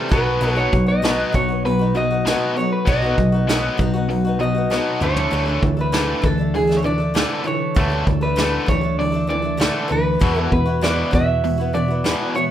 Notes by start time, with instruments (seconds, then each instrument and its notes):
Already playing: steel-string acoustic guitar C3 C4 E4 G4, reed electric piano E4 G4 C5
0.09 picked electric bass B1, overdriven electric guitar B2, steel-string acoustic guitar F#3 B3 D#4 F#4, reed electric piano D#4 F#4 B4, clean electric guitar B4, kick
0.41 picked electric bass B1, steel-string acoustic guitar B2 F#3 B3 D#4 F#4, open hi-hat
0.56 steel-string acoustic guitar B3 D#4 F#4, clean electric guitar C#5
0.72 picked electric bass B1, overdriven electric guitar B2 F#3, kick
0.86 steel-string acoustic guitar B3 D#4 F#4, clean electric guitar D#5
1.02 steel-string acoustic guitar B2 F#3 B3 D#4 F#4, snare, open hi-hat
1.32 picked electric bass B1, overdriven electric guitar B2, steel-string acoustic guitar F#3 B3 D#4 F#4, clean electric guitar C#5, kick
1.48 steel-string acoustic guitar B3 D#4 F#4
1.65 overdriven electric guitar B2 F#3, clean electric guitar B4, open hi-hat
1.79 steel-string acoustic guitar B3 D#4 F#4
1.95 overdriven electric guitar B2, steel-string acoustic guitar F#3 B3 D#4 F#4, clean electric guitar D#5
2.11 steel-string acoustic guitar B3 D#4 F#4
2.26 steel-string acoustic guitar B2 F#3 B3 D#4 F#4, snare, open hi-hat
2.55 overdriven electric guitar B2, steel-string acoustic guitar F#3 B3 D#4, reed electric piano D#4 F#4 A4, clean electric guitar C#5
2.60 steel-string acoustic guitar F#4
2.72 clean electric guitar B4
2.86 picked electric bass B1, steel-string acoustic guitar B2 F#3 B3 D#4 F#4, clean electric guitar D#5, kick, open hi-hat
3.02 steel-string acoustic guitar B3 D#4 F#4
3.17 picked electric bass B1, overdriven electric guitar B2 F#3, kick
3.32 steel-string acoustic guitar B3 D#4 F#4
3.48 steel-string acoustic guitar B2 F#3 B3 D#4 F#4, snare, open hi-hat
3.78 picked electric bass B1, overdriven electric guitar B2, steel-string acoustic guitar F#3 B3 D#4 F#4, kick
3.94 steel-string acoustic guitar B3 D#4 F#4
4.09 overdriven electric guitar B2 F#3, reed electric piano D#4 F#4 B4, open hi-hat
4.25 steel-string acoustic guitar B3 D#4 F#4
4.40 overdriven electric guitar B2, steel-string acoustic guitar F#3 B3 D#4 F#4, clean electric guitar D#5
4.55 steel-string acoustic guitar B3 D#4 F#4
4.70 steel-string acoustic guitar B2 F#3 B3 D#4 F#4, snare
5.00 picked electric bass D2, overdriven electric guitar D3, steel-string acoustic guitar E3 A3 D4 A4, reed electric piano D4 E4 A4, clean electric guitar C#5, mid tom
5.16 floor tom
5.31 picked electric bass D2, steel-string acoustic guitar D3 E3 A3 D4 A4, open hi-hat
5.46 steel-string acoustic guitar A3 D4 A4
5.62 picked electric bass D2, overdriven electric guitar D3 E3, kick
5.77 steel-string acoustic guitar A3 D4 A4
5.81 clean electric guitar B4
5.92 steel-string acoustic guitar D3 E3 A3 D4 A4, snare, open hi-hat
6.22 picked electric bass D2, overdriven electric guitar D3, steel-string acoustic guitar E3 A3 D4 A4, clean electric guitar A4, kick
6.38 steel-string acoustic guitar A3 D4 A4
6.54 overdriven electric guitar D3 E3, clean electric guitar G#4, open hi-hat
6.67 steel-string acoustic guitar A3 D4 A4, snare
6.77 clean electric guitar C#5
6.83 overdriven electric guitar D3, steel-string acoustic guitar E3 A3 D4, clean electric guitar D5
6.87 steel-string acoustic guitar A4
6.98 steel-string acoustic guitar A3 D4 A4
7.14 steel-string acoustic guitar D3 E3 A3 D4 A4, snare, open hi-hat
7.44 overdriven electric guitar D3, steel-string acoustic guitar E3 A3 D4 A4, reed electric piano D4 E4 A4, clean electric guitar C#5
7.75 picked electric bass D2, steel-string acoustic guitar D3 E3 A3 D4 A4, kick, open hi-hat
7.90 steel-string acoustic guitar A3 D4 A4
8.06 picked electric bass D2, overdriven electric guitar D3 E3, kick
8.21 steel-string acoustic guitar A3 D4 A4, clean electric guitar B4
8.36 steel-string acoustic guitar D3 E3 A3 D4 A4, snare, open hi-hat
8.66 picked electric bass D2, overdriven electric guitar D3, steel-string acoustic guitar E3 A3 D4 A4, clean electric guitar C#5, kick
8.81 steel-string acoustic guitar A3 D4 A4
8.99 overdriven electric guitar D3 E3, clean electric guitar D5, open hi-hat
9.12 steel-string acoustic guitar A3 D4 A4
9.27 overdriven electric guitar D3, steel-string acoustic guitar E3 A3 D4 A4, clean electric guitar D5
9.42 steel-string acoustic guitar A3 D4 A4
9.57 steel-string acoustic guitar D3 E3 A3 D4 A4, snare, open hi-hat
9.88 picked electric bass D2, overdriven electric guitar D3, steel-string acoustic guitar E3 A3 D4 A4
9.92 clean electric guitar B4
10.19 picked electric bass E2, overdriven electric guitar E2 B2, steel-string acoustic guitar E3 B3 E4 F#4, reed electric piano E4 F#4 B4, kick, open hi-hat
10.35 steel-string acoustic guitar B3 E4 F#4
10.40 clean electric guitar A4
10.51 overdriven electric guitar E2 B2, picked electric bass E2, clean electric guitar B4, kick
10.66 steel-string acoustic guitar B3 E4 F#4
10.81 overdriven electric guitar E2 B2, steel-string acoustic guitar E3 B3 E4 F#4, clean electric guitar D5, snare, open hi-hat
11.11 overdriven electric guitar E2 B2, picked electric bass E2, steel-string acoustic guitar E3 B3 E4 F#4, clean electric guitar E5, kick
11.44 overdriven electric guitar E2 B2, open hi-hat
11.58 steel-string acoustic guitar B3 E4 F#4
11.73 overdriven electric guitar E2 B2, steel-string acoustic guitar E3 B3 E4 F#4, clean electric guitar D5
11.88 steel-string acoustic guitar B3 E4 F#4
12.04 overdriven electric guitar E2 B2, steel-string acoustic guitar E3 B3 E4 F#4, snare, open hi-hat
12.35 overdriven electric guitar E2 B2, steel-string acoustic guitar E3 B3 E4 F#4, clean electric guitar C#5